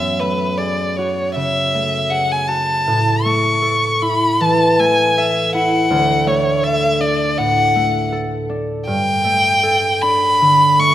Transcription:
Already playing: harp F#2 B3 C#4 F#4, violin E5
0.20 harp A3, violin B4
0.58 harp G#4, violin D5
0.97 harp F#4, violin C#5
1.36 harp C#3, violin E5
1.75 harp A3
2.10 harp G#4, violin F#5
2.32 violin G#5
2.48 harp F#4, violin A5
2.87 harp A2
3.25 harp A3, violin C#6
3.62 harp A4
4.02 harp E4, violin B5
4.40 harp E3, violin A5
4.79 harp A3, violin G#5
5.18 harp A4, violin E5
5.54 harp E4, violin F#5
5.90 harp D2
6.27 harp A3, violin C#5
6.63 harp A4, violin E5
7.00 harp D4, violin D5
7.38 harp A2, violin F#5
7.76 harp A3
8.12 harp A4
8.49 harp D4
8.87 harp G2, violin G5
9.24 harp A3
9.63 harp A4
10.02 harp D4, violin B5
10.41 harp D3
10.79 harp A3, violin C#6

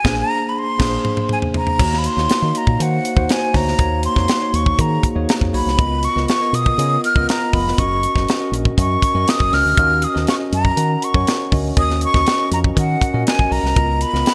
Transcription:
Already playing: flute G#5
0.04 fingered electric bass A#1, tine electric piano A#3 D4 G#4 C5, kick, snare, crash
0.20 flute A#5
0.49 flute B5
0.59 flute C6
0.78 fingered electric bass A#1, tine electric piano A#3 D4 G#4 C5, kick, snare, crash
1.05 mid tom
1.17 mid tom
1.29 flute G#5, mid tom
1.42 floor tom
1.54 flute A#5, floor tom
1.67 floor tom
1.78 fingered electric bass D#2, tine electric piano A#3 D#4 F#4 C#5, kick, crash
1.93 snare
1.98 flute B5
2.04 flute C6, closed hi-hat
2.16 fingered electric bass D#2, tine electric piano A#3 D#4 F#4 C#5, snare
2.29 muted fingered electric bass stroke, snare, closed hi-hat
2.42 fingered electric bass D#3, tine electric piano A#3 D#4 F#4 D#5
2.55 flute A#5, closed hi-hat
2.67 fingered electric bass A#2, kick
2.79 fingered electric bass D#3, tine electric piano A#3 D#4 F#4 C5, flute F#5, closed hi-hat
3.05 closed hi-hat
3.16 fingered electric bass D#2, tine electric piano A#3 D#4 F#4 C5, kick
3.29 flute G#5, snare, closed hi-hat
3.53 fingered electric bass D2, tine electric piano A#3 D#4 F#4 C#5, flute A#5, kick, snare, open hi-hat
3.68 snare
3.78 fingered electric bass D#2, tine electric piano A#3 D#4 F#4 C#5, kick, closed hi-hat
4.03 flute C6, closed hi-hat
4.16 fingered electric bass F2, tine electric piano A#3 D#4 F#4 C#5, kick, snare
4.28 snare, closed hi-hat
4.41 tine electric piano A#3 D#4 F#4 C#5
4.53 fingered electric bass D#2, flute C#6, closed hi-hat
4.66 kick
4.78 fingered electric bass D#3, tine electric piano A#3 D#4 F#4 G#4, flute A#5, kick, closed hi-hat
5.03 kick, closed hi-hat
5.15 fingered electric bass D#2, tine electric piano A#3 D#4 F#4 C#5
5.29 flute A#5, snare, closed hi-hat
5.41 fingered electric bass F2, kick
5.53 fingered electric bass B1, tine electric piano A#3 D#4 F#4 C#5, flute B5, open hi-hat
5.66 fingered electric bass C2, snare
5.78 fingered electric bass C#2, tine electric piano B3 F4 A#4 D#5, kick, closed hi-hat
6.03 flute C#6, closed hi-hat
6.15 fingered electric bass C#2, tine electric piano B3 F4 A#4 D#5, snare
6.28 flute C#6, snare, closed hi-hat
6.40 tine electric piano B3 F4 A#4 D#5
6.53 fingered electric bass B2, flute D#6, closed hi-hat
6.66 kick
6.77 fingered electric bass C#3, tine electric piano B3 F4 A#4 D#5, closed hi-hat
7.04 flute F6, closed hi-hat
7.15 fingered electric bass C#2, tine electric piano B3 F4 A#4 D#5, kick
7.29 flute A#5, snare, closed hi-hat
7.53 fingered electric bass F1, tine electric piano B3 F4 A#4 D#5, flute B5, kick, open hi-hat
7.68 snare
7.77 fingered electric bass F#1, tine electric piano C#4 F#4 A#4 D#5, flute C#6, kick, closed hi-hat
8.03 closed hi-hat
8.15 fingered electric bass F#1, tine electric piano C#4 F#4 A#4 D#5, kick, snare
8.29 snare, closed hi-hat
8.39 tine electric piano C#4 F#4 A#4 D#5
8.52 fingered electric bass A#1, closed hi-hat
8.65 kick
8.77 fingered electric bass F#2, tine electric piano C#4 F#4 A#4 D#5, flute C#6, kick, closed hi-hat
9.02 kick, closed hi-hat
9.14 fingered electric bass F#2, tine electric piano C#4 F#4 A#4 D#5
9.28 flute D#6, snare, closed hi-hat
9.40 fingered electric bass F#1, kick
9.52 fingered electric bass C#2, tine electric piano C#4 F#4 A#4 D#5, flute F6, snare, open hi-hat
9.65 fingered electric bass D2
9.77 fingered electric bass D#2, tine electric piano C#4 F#4 A#4 D#5, kick, closed hi-hat
10.02 flute D#6, closed hi-hat
10.14 fingered electric bass D#2, tine electric piano C#4 F#4 A#4 D#5, snare
10.27 flute C#6, snare, closed hi-hat
10.39 tine electric piano C#4 F#4 A#4 D#5
10.52 fingered electric bass F#2, flute A#5, closed hi-hat
10.65 kick
10.76 fingered electric bass D#3, tine electric piano C#4 F#4 A#4 F#5, closed hi-hat
11.02 flute C#6, closed hi-hat
11.14 fingered electric bass F#2, tine electric piano C#4 F#4 A#4 C#5, kick
11.27 snare, closed hi-hat
11.51 fingered electric bass D2, tine electric piano C#4 F#4 A#4 D#5, kick, open hi-hat
11.77 fingered electric bass D#2, tine electric piano C#4 F#4 A#4 D#5, flute D#6, kick, closed hi-hat
11.90 snare
12.01 flute C#6, closed hi-hat
12.13 fingered electric bass D#2, tine electric piano C#4 F#4 A#4 D#5, kick, snare
12.27 snare, closed hi-hat
12.38 tine electric piano C#4 F#4 A#4 D#5
12.51 fingered electric bass F2, flute A#5, closed hi-hat
12.64 kick
12.75 fingered electric bass D#3, tine electric piano C#4 F#4 A#4 D#5, flute F#5, kick, closed hi-hat
13.01 kick, closed hi-hat
13.13 fingered electric bass A#2, tine electric piano C#4 F#4 A#4 D#5
13.27 flute G#5, snare, closed hi-hat
13.39 fingered electric bass A#1, kick
13.50 fingered electric bass B1, tine electric piano C#4 F#4 A#4 D#5, flute A#5, open hi-hat
13.63 fingered electric bass C2, snare
13.75 fingered electric bass C#2, tine electric piano B3 F4 A#4 D#5, kick, closed hi-hat
14.01 flute B5, closed hi-hat
14.13 fingered electric bass C#2, tine electric piano B3 F4 A#4 D#5, snare
14.26 snare, closed hi-hat

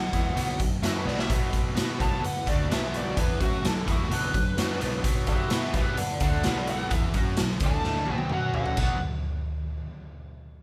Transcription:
Already playing: picked electric bass B1, lead electric guitar F#5
0.13 picked electric bass E2, overdriven electric guitar E3 B3 E4, kick, closed hi-hat
0.35 picked electric bass B1, overdriven electric guitar B2 F#3 B3, closed hi-hat
0.60 picked electric bass B1, overdriven electric guitar B2 F#3, kick, closed hi-hat
0.81 picked electric bass F#2, overdriven electric guitar F#3 C#4 F#4, lead electric guitar B4 E5, snare, closed hi-hat
0.95 lead electric guitar D4 B4
1.05 picked electric bass B1, overdriven electric guitar B2 F#3 B3, lead electric guitar F#4 D5, snare
1.19 lead electric guitar G4 E5, snare
1.29 picked electric bass B1, overdriven electric guitar B2 F#3 B3, kick, closed hi-hat
1.53 kick, closed hi-hat
1.75 picked electric bass B2, overdriven electric guitar B3 F#4 B4, snare, closed hi-hat
1.99 picked electric bass B1, overdriven electric guitar B2 F#3 B3, lead electric guitar C#5 A5, kick, closed hi-hat
2.24 lead electric guitar B4 F#5, muted picked electric bass stroke, muted overdriven electric guitar stroke, closed hi-hat
2.47 picked electric bass D2, overdriven electric guitar D3 A3 D4, lead electric guitar F#4 D5, kick, closed hi-hat
2.70 picked electric bass B1, overdriven electric guitar B2 F#3 B3, lead electric guitar B4 E5, snare, closed hi-hat
2.94 lead electric guitar F#4 D5, closed hi-hat
3.17 picked electric bass E2, overdriven electric guitar E3 B3 E4, lead electric guitar D4 B4, kick, closed hi-hat
3.40 picked electric bass F#2, overdriven electric guitar F#3 C#4 F#4, lead electric guitar A3 F#4, kick, closed hi-hat
3.63 picked electric bass B1, overdriven electric guitar B2 F#3, lead electric guitar D4 A4, snare, closed hi-hat
3.86 picked electric bass E2, overdriven electric guitar E3 B3 E4, lead electric guitar A3, kick, closed hi-hat
3.92 lead electric guitar F#4
4.10 picked electric bass B1, overdriven electric guitar B2 F#3 B3, lead electric guitar D4, closed hi-hat
4.15 lead electric guitar B4
4.34 picked electric bass B1, overdriven electric guitar B2 F#3, kick, closed hi-hat
4.57 picked electric bass F#2, overdriven electric guitar F#3 C#4 F#4, snare, closed hi-hat
4.79 picked electric bass B1, overdriven electric guitar B2 F#3 B3, closed hi-hat
5.03 picked electric bass B1, overdriven electric guitar B2 F#3 B3, kick, closed hi-hat
5.27 lead electric guitar G4 B4 E5, kick, closed hi-hat
5.50 picked electric bass B2, overdriven electric guitar B3 F#4 B4, lead electric guitar B4 E5, snare, closed hi-hat
5.73 picked electric bass B1, overdriven electric guitar B2 F#3 B3, lead electric guitar G4 B4 E5, kick, closed hi-hat
5.97 lead electric guitar B4 D5 F#5, muted overdriven electric guitar stroke, muted picked electric bass stroke, closed hi-hat
6.20 picked electric bass D2, overdriven electric guitar D3 A3 D4, lead electric guitar A4 D5 F#5, kick, closed hi-hat
6.43 picked electric bass B1, overdriven electric guitar B2 F#3 B3, lead electric guitar B4 D5 F#5, snare, closed hi-hat
6.67 lead electric guitar A4 F#5, closed hi-hat
6.90 picked electric bass E2, overdriven electric guitar E3 B3 E4, kick, closed hi-hat
7.14 picked electric bass F#2, overdriven electric guitar F#3 C#4 F#4, kick, closed hi-hat
7.37 picked electric bass B1, overdriven electric guitar B2 F#3, snare, closed hi-hat
7.60 picked electric bass D2, overdriven electric guitar D3 A3, lead electric guitar D5, kick, closed hi-hat
7.64 overdriven electric guitar D4, lead electric guitar A5
7.84 snare
8.06 picked electric bass B1, overdriven electric guitar B2 F#3 B3, high tom
8.14 lead electric guitar C5
8.18 lead electric guitar G5, high tom
8.29 picked electric bass F#2, overdriven electric guitar F#3 C#4 F#4, lead electric guitar C#5 F#5, mid tom
8.54 lead electric guitar A4 F#5, floor tom
8.66 floor tom
8.77 picked electric bass B1, overdriven electric guitar B2 F#3 B3, lead electric guitar B3 F#5, kick, crash

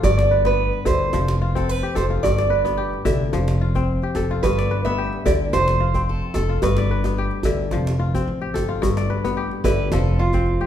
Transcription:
Already playing: kora C4 F4 G4 A4
0.03 upright bass G1, kora G2, steel-string acoustic guitar D5, djembe bass
0.18 kora D5, djembe slap
0.31 kora B4
0.45 kora B3, steel-string acoustic guitar B4, djembe tone
0.73 djembe slap
0.85 upright bass D2, kora D3 E5, steel-string acoustic guitar C5, djembe bass
1.13 upright bass F1, kora F3, djembe slap, djembe tone
1.28 djembe slap
1.42 kora F4
1.55 kora C4, steel-string acoustic guitar A4, djembe slap, djembe bass
1.68 steel-string acoustic guitar B4, djembe slap
1.83 kora G4, djembe slap
1.95 upright bass F1, kora A4, steel-string acoustic guitar C5, djembe tone
2.10 kora F4
2.23 upright bass G1, kora G2, steel-string acoustic guitar D5, djembe bass
2.38 kora D5, djembe slap
2.50 kora B4
2.65 kora B3, djembe tone
2.77 kora G4
2.93 djembe slap
3.05 upright bass C2, kora D3 E5, djembe bass
3.33 upright bass F1, kora F3, djembe slap, djembe tone
3.48 djembe slap
3.61 kora F4
3.75 kora C4, djembe slap, djembe bass
3.88 djembe slap
4.02 kora G4, djembe slap
4.15 upright bass F1, kora A4, djembe tone
4.31 kora F4
4.43 upright bass G1, kora G2, steel-string acoustic guitar B4, djembe bass
4.58 kora D5, djembe slap
4.71 kora B4
4.85 kora B3, steel-string acoustic guitar E5, djembe tone
4.98 kora G4
5.13 djembe slap
5.25 upright bass D2, kora D3 E5, steel-string acoustic guitar D5, djembe bass
5.53 upright bass F1, kora F3, steel-string acoustic guitar C5, djembe slap, djembe tone
5.68 djembe slap
5.80 kora F4
5.94 kora C4, djembe slap, djembe bass
6.08 steel-string acoustic guitar A4, djembe slap
6.22 djembe slap
6.34 upright bass F1, kora A4, steel-string acoustic guitar A4, djembe tone
6.49 kora F4
6.62 upright bass G1, kora G2, steel-string acoustic guitar B4, djembe bass
6.77 kora D5, djembe slap
6.91 kora B4
7.04 kora B3, djembe tone
7.17 kora G4, djembe slap
7.31 djembe slap
7.43 upright bass D2, kora D3 E5, djembe bass
7.71 upright bass F1, kora F3, djembe slap, djembe tone
7.87 djembe slap
7.99 kora F4, djembe slap
8.14 kora C4, djembe bass
8.27 upright bass A1
8.42 kora G4
8.54 upright bass G1, kora A4, djembe tone
8.69 kora F4
8.82 upright bass G1, kora G2, djembe bass
8.97 kora D5, djembe slap
9.10 kora B4
9.24 kora B3, djembe tone
9.37 kora G4
9.51 djembe slap
9.64 upright bass G1, kora D3 E5, steel-string acoustic guitar B4, djembe bass
9.92 upright bass F1, kora F3, steel-string acoustic guitar A4, djembe slap, djembe tone
10.19 steel-string acoustic guitar F4, kora F4
10.33 kora C4, djembe slap, djembe bass
10.46 djembe slap
10.60 kora G4, djembe slap

